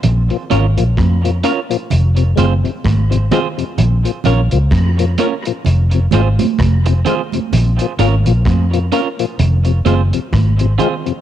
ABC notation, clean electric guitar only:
X:1
M:4/4
L:1/8
Q:"Swing 16ths" 1/4=64
K:Bbm
V:1 name="Clean electric guitar"
z [DFBd] z [DFBd] z [CFAc] z [CFAc] | z [DFBd] z [DFBd] z [CFAc] z [CFAc] | z [DFBd] z [DFBd] z [CFAc] z [CFAc] |]